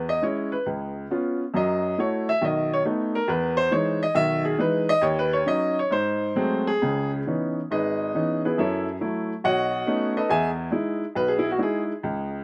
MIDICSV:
0, 0, Header, 1, 2, 480
1, 0, Start_track
1, 0, Key_signature, 4, "major"
1, 0, Tempo, 437318
1, 1698, Time_signature, 4, 2, 24, 8
1, 6002, Tempo, 449775
1, 7452, Key_signature, 4, "minor"
1, 8402, Tempo, 433839
1, 13626, End_track
2, 0, Start_track
2, 0, Title_t, "Upright piano"
2, 0, Program_c, 0, 0
2, 0, Note_on_c, 0, 40, 61
2, 99, Note_on_c, 0, 75, 82
2, 181, Note_off_c, 0, 40, 0
2, 242, Note_on_c, 0, 56, 49
2, 244, Note_off_c, 0, 75, 0
2, 247, Note_on_c, 0, 61, 41
2, 252, Note_on_c, 0, 64, 51
2, 256, Note_on_c, 0, 73, 63
2, 570, Note_off_c, 0, 73, 0
2, 571, Note_on_c, 0, 71, 72
2, 589, Note_off_c, 0, 56, 0
2, 591, Note_off_c, 0, 61, 0
2, 593, Note_off_c, 0, 64, 0
2, 723, Note_off_c, 0, 71, 0
2, 726, Note_on_c, 0, 37, 60
2, 1149, Note_off_c, 0, 37, 0
2, 1215, Note_on_c, 0, 59, 47
2, 1222, Note_on_c, 0, 61, 44
2, 1223, Note_on_c, 0, 65, 58
2, 1558, Note_off_c, 0, 59, 0
2, 1561, Note_off_c, 0, 61, 0
2, 1562, Note_off_c, 0, 65, 0
2, 1687, Note_on_c, 0, 42, 69
2, 1691, Note_on_c, 0, 54, 67
2, 1717, Note_on_c, 0, 75, 81
2, 2117, Note_off_c, 0, 42, 0
2, 2119, Note_off_c, 0, 54, 0
2, 2162, Note_off_c, 0, 75, 0
2, 2172, Note_on_c, 0, 57, 53
2, 2178, Note_on_c, 0, 64, 47
2, 2182, Note_on_c, 0, 66, 54
2, 2194, Note_on_c, 0, 73, 72
2, 2508, Note_off_c, 0, 73, 0
2, 2514, Note_on_c, 0, 76, 94
2, 2522, Note_off_c, 0, 57, 0
2, 2525, Note_off_c, 0, 64, 0
2, 2527, Note_off_c, 0, 66, 0
2, 2650, Note_on_c, 0, 51, 60
2, 2652, Note_on_c, 0, 35, 62
2, 2662, Note_off_c, 0, 76, 0
2, 2686, Note_on_c, 0, 75, 71
2, 2991, Note_off_c, 0, 75, 0
2, 3002, Note_on_c, 0, 73, 85
2, 3070, Note_off_c, 0, 51, 0
2, 3071, Note_off_c, 0, 35, 0
2, 3088, Note_off_c, 0, 73, 0
2, 3128, Note_on_c, 0, 57, 54
2, 3130, Note_on_c, 0, 59, 51
2, 3132, Note_on_c, 0, 63, 60
2, 3461, Note_on_c, 0, 70, 90
2, 3470, Note_off_c, 0, 57, 0
2, 3471, Note_off_c, 0, 59, 0
2, 3472, Note_off_c, 0, 63, 0
2, 3599, Note_on_c, 0, 40, 68
2, 3607, Note_off_c, 0, 70, 0
2, 3612, Note_on_c, 0, 71, 79
2, 3918, Note_on_c, 0, 72, 98
2, 3926, Note_off_c, 0, 71, 0
2, 4019, Note_off_c, 0, 40, 0
2, 4074, Note_off_c, 0, 72, 0
2, 4074, Note_on_c, 0, 52, 55
2, 4078, Note_on_c, 0, 56, 51
2, 4082, Note_on_c, 0, 63, 61
2, 4086, Note_on_c, 0, 73, 80
2, 4401, Note_off_c, 0, 73, 0
2, 4420, Note_off_c, 0, 52, 0
2, 4420, Note_on_c, 0, 75, 91
2, 4422, Note_off_c, 0, 56, 0
2, 4424, Note_off_c, 0, 63, 0
2, 4552, Note_on_c, 0, 51, 64
2, 4553, Note_on_c, 0, 35, 69
2, 4561, Note_on_c, 0, 76, 105
2, 4563, Note_off_c, 0, 75, 0
2, 4877, Note_off_c, 0, 76, 0
2, 4883, Note_on_c, 0, 68, 70
2, 4972, Note_off_c, 0, 51, 0
2, 4973, Note_off_c, 0, 35, 0
2, 5029, Note_on_c, 0, 52, 56
2, 5033, Note_off_c, 0, 68, 0
2, 5034, Note_on_c, 0, 56, 51
2, 5042, Note_on_c, 0, 63, 65
2, 5053, Note_on_c, 0, 71, 77
2, 5364, Note_off_c, 0, 71, 0
2, 5370, Note_on_c, 0, 75, 108
2, 5377, Note_off_c, 0, 52, 0
2, 5380, Note_off_c, 0, 56, 0
2, 5384, Note_off_c, 0, 63, 0
2, 5502, Note_on_c, 0, 39, 78
2, 5517, Note_off_c, 0, 75, 0
2, 5520, Note_on_c, 0, 73, 79
2, 5676, Note_off_c, 0, 73, 0
2, 5694, Note_on_c, 0, 71, 88
2, 5844, Note_off_c, 0, 71, 0
2, 5852, Note_on_c, 0, 73, 86
2, 5930, Note_off_c, 0, 39, 0
2, 5989, Note_on_c, 0, 54, 57
2, 5993, Note_on_c, 0, 61, 52
2, 5994, Note_on_c, 0, 63, 62
2, 6003, Note_off_c, 0, 73, 0
2, 6012, Note_on_c, 0, 75, 95
2, 6320, Note_off_c, 0, 75, 0
2, 6333, Note_off_c, 0, 54, 0
2, 6335, Note_off_c, 0, 61, 0
2, 6336, Note_off_c, 0, 63, 0
2, 6348, Note_on_c, 0, 73, 84
2, 6470, Note_on_c, 0, 44, 70
2, 6485, Note_off_c, 0, 73, 0
2, 6487, Note_on_c, 0, 72, 89
2, 6897, Note_off_c, 0, 44, 0
2, 6947, Note_on_c, 0, 54, 59
2, 6954, Note_on_c, 0, 56, 55
2, 6955, Note_on_c, 0, 57, 53
2, 6956, Note_on_c, 0, 60, 64
2, 7258, Note_off_c, 0, 72, 0
2, 7288, Note_on_c, 0, 68, 93
2, 7304, Note_off_c, 0, 54, 0
2, 7307, Note_off_c, 0, 56, 0
2, 7308, Note_off_c, 0, 57, 0
2, 7308, Note_off_c, 0, 60, 0
2, 7443, Note_on_c, 0, 37, 62
2, 7444, Note_on_c, 0, 49, 59
2, 7742, Note_off_c, 0, 68, 0
2, 7865, Note_off_c, 0, 37, 0
2, 7866, Note_off_c, 0, 49, 0
2, 7926, Note_on_c, 0, 52, 47
2, 7927, Note_on_c, 0, 59, 43
2, 7927, Note_on_c, 0, 61, 43
2, 7933, Note_on_c, 0, 63, 51
2, 8265, Note_off_c, 0, 52, 0
2, 8266, Note_off_c, 0, 59, 0
2, 8266, Note_off_c, 0, 61, 0
2, 8269, Note_off_c, 0, 63, 0
2, 8391, Note_on_c, 0, 32, 58
2, 8400, Note_on_c, 0, 68, 58
2, 8401, Note_on_c, 0, 75, 75
2, 8402, Note_on_c, 0, 63, 57
2, 8406, Note_on_c, 0, 71, 58
2, 8816, Note_off_c, 0, 32, 0
2, 8869, Note_off_c, 0, 63, 0
2, 8878, Note_on_c, 0, 52, 49
2, 8878, Note_on_c, 0, 59, 48
2, 8884, Note_on_c, 0, 61, 43
2, 8886, Note_on_c, 0, 63, 56
2, 9166, Note_off_c, 0, 68, 0
2, 9167, Note_off_c, 0, 75, 0
2, 9169, Note_off_c, 0, 71, 0
2, 9198, Note_off_c, 0, 59, 0
2, 9214, Note_on_c, 0, 68, 51
2, 9214, Note_on_c, 0, 71, 62
2, 9215, Note_on_c, 0, 59, 50
2, 9224, Note_off_c, 0, 52, 0
2, 9224, Note_on_c, 0, 64, 47
2, 9227, Note_off_c, 0, 61, 0
2, 9227, Note_off_c, 0, 63, 0
2, 9356, Note_on_c, 0, 42, 66
2, 9357, Note_off_c, 0, 64, 0
2, 9361, Note_off_c, 0, 68, 0
2, 9361, Note_off_c, 0, 71, 0
2, 9362, Note_off_c, 0, 59, 0
2, 9368, Note_on_c, 0, 76, 68
2, 9374, Note_on_c, 0, 64, 58
2, 9376, Note_on_c, 0, 73, 54
2, 9379, Note_on_c, 0, 69, 57
2, 9683, Note_off_c, 0, 76, 0
2, 9686, Note_off_c, 0, 64, 0
2, 9687, Note_off_c, 0, 73, 0
2, 9689, Note_off_c, 0, 69, 0
2, 9777, Note_off_c, 0, 42, 0
2, 9829, Note_on_c, 0, 54, 50
2, 9834, Note_on_c, 0, 64, 54
2, 9835, Note_on_c, 0, 57, 47
2, 10175, Note_off_c, 0, 54, 0
2, 10178, Note_off_c, 0, 57, 0
2, 10178, Note_off_c, 0, 64, 0
2, 10311, Note_on_c, 0, 35, 61
2, 10316, Note_on_c, 0, 78, 88
2, 10317, Note_on_c, 0, 75, 70
2, 10322, Note_on_c, 0, 73, 71
2, 10323, Note_on_c, 0, 66, 72
2, 10723, Note_off_c, 0, 35, 0
2, 10780, Note_on_c, 0, 57, 53
2, 10783, Note_on_c, 0, 59, 50
2, 10788, Note_on_c, 0, 61, 50
2, 10789, Note_on_c, 0, 63, 57
2, 11064, Note_off_c, 0, 78, 0
2, 11065, Note_off_c, 0, 75, 0
2, 11067, Note_off_c, 0, 73, 0
2, 11068, Note_off_c, 0, 66, 0
2, 11098, Note_off_c, 0, 63, 0
2, 11113, Note_on_c, 0, 71, 57
2, 11114, Note_on_c, 0, 63, 57
2, 11116, Note_on_c, 0, 75, 74
2, 11117, Note_on_c, 0, 69, 57
2, 11121, Note_off_c, 0, 57, 0
2, 11122, Note_off_c, 0, 59, 0
2, 11125, Note_off_c, 0, 61, 0
2, 11251, Note_off_c, 0, 75, 0
2, 11254, Note_on_c, 0, 40, 71
2, 11258, Note_off_c, 0, 63, 0
2, 11258, Note_off_c, 0, 71, 0
2, 11260, Note_off_c, 0, 69, 0
2, 11265, Note_on_c, 0, 80, 90
2, 11268, Note_on_c, 0, 75, 64
2, 11270, Note_on_c, 0, 76, 70
2, 11271, Note_on_c, 0, 68, 66
2, 11458, Note_off_c, 0, 80, 0
2, 11460, Note_off_c, 0, 75, 0
2, 11462, Note_off_c, 0, 68, 0
2, 11462, Note_off_c, 0, 76, 0
2, 11672, Note_off_c, 0, 40, 0
2, 11715, Note_on_c, 0, 56, 54
2, 11721, Note_on_c, 0, 63, 46
2, 11727, Note_on_c, 0, 64, 62
2, 12068, Note_off_c, 0, 56, 0
2, 12071, Note_off_c, 0, 63, 0
2, 12074, Note_off_c, 0, 64, 0
2, 12205, Note_on_c, 0, 35, 64
2, 12215, Note_on_c, 0, 71, 86
2, 12346, Note_on_c, 0, 68, 76
2, 12375, Note_off_c, 0, 71, 0
2, 12463, Note_on_c, 0, 64, 74
2, 12522, Note_off_c, 0, 68, 0
2, 12577, Note_off_c, 0, 64, 0
2, 12600, Note_on_c, 0, 66, 79
2, 12630, Note_off_c, 0, 35, 0
2, 12680, Note_on_c, 0, 56, 53
2, 12682, Note_on_c, 0, 63, 48
2, 12686, Note_off_c, 0, 66, 0
2, 12691, Note_on_c, 0, 64, 56
2, 12728, Note_on_c, 0, 68, 78
2, 12919, Note_off_c, 0, 68, 0
2, 13038, Note_off_c, 0, 56, 0
2, 13039, Note_off_c, 0, 63, 0
2, 13043, Note_off_c, 0, 64, 0
2, 13178, Note_on_c, 0, 37, 68
2, 13614, Note_off_c, 0, 37, 0
2, 13626, End_track
0, 0, End_of_file